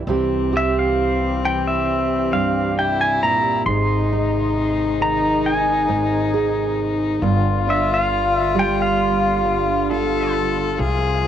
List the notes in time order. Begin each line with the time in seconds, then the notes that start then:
0.07 C2 C3 E3 G3 C4 G4
0.53 G4
0.57 E5
0.79 F5
1.44 E3 G5
1.67 E5
2.32 G2 F5
2.78 C3 E4 G5
3.01 G#5
3.23 A#2 A#5
3.66 G#1 G#2 D#3 G#3 D#4 G#4 C6
4.13 D#4
5.00 D#3 A#5
5.46 G#5
5.88 G#2
6.34 G#4
7.22 G1 G2 D3 G3 B3 F4
7.67 D4 E5
7.94 F5
8.37 E5
8.55 G3
8.59 G5
8.82 F5
9.45 D3
9.90 F4 A4
10.79 C2 C3 F3 G#3 G#4